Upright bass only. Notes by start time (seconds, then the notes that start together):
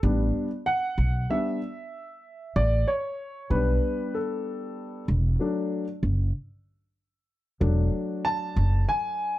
0.03 A1
0.98 B1
2.56 A1
3.50 B1
5.08 E1
6.03 F#1
7.61 E1
8.56 F#1